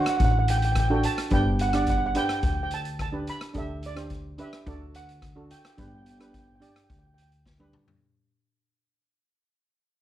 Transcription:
Already playing: steel pan D4 F#4 C5
0.02 steel pan F#5
0.06 steel pan F#5, cross-stick, closed hi-hat
0.17 upright bass A1, steel pan F#5, kick, closed hi-hat
0.25 steel pan F#5
0.32 steel pan F#5
0.39 steel pan F#5
0.48 steel pan G5, closed hi-hat
0.58 steel pan G5
0.62 steel pan G5, closed hi-hat
0.72 steel pan G5, kick, cross-stick, closed hi-hat
0.80 steel pan G5
0.88 steel pan D4 F#4 A4 G5
0.94 steel pan G5
1.03 steel pan A5, closed hi-hat
1.18 cross-stick, closed hi-hat
1.30 upright bass G1, steel pan D4 G4 B4 G5, kick, closed hi-hat
1.59 steel pan F#5, closed hi-hat
1.69 steel pan F#5
1.73 steel pan D4 G4 D5 F#5, cross-stick, closed hi-hat
1.82 steel pan F#5
1.87 steel pan F#5, kick, closed hi-hat
1.98 steel pan F#5
2.06 steel pan F#5
2.15 steel pan D4 G4 B4 G5, closed hi-hat
2.25 steel pan G5, cross-stick, closed hi-hat
2.33 steel pan G5
2.41 upright bass D2, steel pan G5, kick, closed hi-hat
2.46 steel pan G5
2.55 steel pan G5
2.63 steel pan G5
2.71 steel pan A5, closed hi-hat
2.85 closed hi-hat
2.99 steel pan A5, kick, cross-stick, closed hi-hat
3.12 steel pan D4 G4 B4
3.27 steel pan B5, closed hi-hat
3.41 cross-stick, closed hi-hat
3.54 upright bass D2, steel pan D4 G4 A4, kick, closed hi-hat
3.58 steel pan E5
3.83 steel pan D5, closed hi-hat
3.95 steel pan D4 G4 C5, cross-stick, closed hi-hat
4.10 kick, closed hi-hat
4.38 steel pan D4 G4 B4 E5, closed hi-hat
4.53 cross-stick, closed hi-hat
4.66 upright bass D2, steel pan D4 F#4 A4 D5, kick, closed hi-hat
4.94 steel pan F#5, closed hi-hat
5.09 closed hi-hat
5.22 kick, cross-stick, closed hi-hat
5.36 steel pan D4 F#4 A4
5.50 steel pan G5, closed hi-hat
5.58 steel pan G5
5.65 steel pan G5, cross-stick, closed hi-hat
5.72 steel pan G5
5.77 upright bass G1, steel pan D4 G4 B4 G5, kick, closed hi-hat
5.88 steel pan G5
5.95 steel pan G5
6.02 steel pan G5
6.06 closed hi-hat
6.10 steel pan G5
6.18 steel pan D4 G4 B4 G5, cross-stick, closed hi-hat
6.26 steel pan G5
6.33 steel pan G5, kick, closed hi-hat
6.39 steel pan G5
6.47 steel pan G5
6.55 steel pan G5
6.60 steel pan D4 G4 D5 G5, closed hi-hat
6.69 steel pan G5
6.75 steel pan G5, cross-stick, closed hi-hat
6.84 steel pan G5
6.89 upright bass D2, steel pan G5, kick, closed hi-hat
6.99 steel pan G5
7.07 steel pan G5
7.14 steel pan G5, closed hi-hat
7.22 steel pan G5
7.32 closed hi-hat
7.45 kick, snare
7.59 steel pan D4 G4 B4, high tom
7.73 mid tom
7.88 floor tom

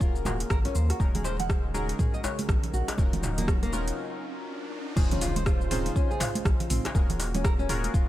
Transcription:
Already playing: analog synth pad A#3, synth keys C#4 F4 F#4 G#4 A#4
0.01 analog synth bass D#1, nylon-string guitar F4, kick, shaker
0.16 shaker
0.25 nylon-string guitar F#4, mid tom, djembe slap, high conga, low conga, shaker
0.40 closed hi-hat, shaker
0.50 analog synth bass G#1, nylon-string guitar A#4, kick, cross-stick, shaker
0.65 nylon-string guitar C#4, closed hi-hat, djembe tone
0.75 analog synth bass D#2, nylon-string guitar C5, low conga, shaker
0.90 nylon-string guitar F#4, cross-stick, closed hi-hat, shaker
1.00 analog synth bass D#1, analog synth pad C#3 G#3, synth keys C#4 D#4 F#4 G#4 A#4, kick, riser, high conga, djembe tone, shaker
1.15 nylon-string guitar G#4, closed hi-hat, high conga, low conga
1.24 nylon-string guitar C5, djembe slap, shaker
1.39 nylon-string guitar F#5, closed hi-hat, high conga, low conga, shaker
1.49 nylon-string guitar C5, kick, cross-stick, shaker
1.74 synth keys C#4 D#4 F#4 G#4 A#4, nylon-string guitar F#4, high conga, shaker
1.89 closed hi-hat, shaker
1.99 nylon-string guitar G#4, kick, mid tom, shaker
2.14 nylon-string guitar D#5, shaker
2.24 nylon-string guitar C#5, djembe slap, djembe tone, shaker
2.39 closed hi-hat, high conga, shaker
2.49 analog synth bass A#1, kick, cross-stick, low conga, shaker
2.64 closed hi-hat, low conga
2.74 analog synth bass A#1, nylon-string guitar F#4, shaker
2.88 cross-stick, closed hi-hat, djembe slap, shaker
2.98 analog synth bass D#1, analog synth pad F#3 D#4, synth keys C#4 D#4 F4 F#4 A#4, kick, high conga, djembe tone, shaker
3.13 closed hi-hat, high conga, low conga, shaker
3.23 mid tom, djembe slap, shaker
3.38 nylon-string guitar A#3, closed hi-hat, djembe tone, high conga, low conga, shaker
3.48 nylon-string guitar F#4, kick, cross-stick, shaker
3.63 nylon-string guitar A#3, closed hi-hat, shaker
3.73 synth keys C#4 D#4 F4 F#4 A#4, djembe tone, high conga, shaker
3.88 closed hi-hat, shaker
4.96 analog synth bass D#1, analog synth pad C#3 F4 C5, synth keys C#4 D#4 F4 G#4 C5, kick, crash, impact, djembe tone, high conga, shaker
5.11 nylon-string guitar C#4, closed hi-hat, low conga, shaker
5.21 nylon-string guitar F4, open hi-hat, djembe slap, shaker
5.36 nylon-string guitar C5, closed hi-hat, high conga, low conga, shaker
5.46 nylon-string guitar F4, kick, cross-stick, shaker
5.61 shaker
5.71 nylon-string guitar C4, synth keys C#4 D#4 F4 G#4 C5, mid tom, open hi-hat, shaker
5.86 closed hi-hat, high conga, shaker
5.96 nylon-string guitar C#4, kick, djembe tone, shaker
6.11 nylon-string guitar G#4, shaker
6.20 nylon-string guitar F4, mid tom, open hi-hat, djembe slap, djembe tone, shaker
6.35 closed hi-hat, high conga, shaker
6.45 analog synth bass A#1, kick, cross-stick, low conga, shaker
6.60 closed hi-hat, low conga, shaker
6.70 analog synth bass A#1, nylon-string guitar C4, mid tom, open hi-hat, high conga, shaker
6.85 cross-stick, closed hi-hat, djembe slap, shaker
6.95 analog synth bass D#1, analog synth pad A#3, synth keys C#4 F4 F#4 G#4 A#4, kick, high conga, djembe tone, shaker
7.10 closed hi-hat, low conga, shaker
7.20 open hi-hat, djembe slap, shaker
7.34 nylon-string guitar C#4, closed hi-hat, high conga, low conga, shaker
7.44 nylon-string guitar A#4, kick, cross-stick, shaker
7.59 nylon-string guitar C#4, shaker
7.69 synth keys C#4 F4 F#4 G#4 A#4, mid tom, open hi-hat, djembe tone, shaker
7.84 closed hi-hat, high conga, shaker
7.94 analog synth bass D#1, nylon-string guitar F4, kick, shaker

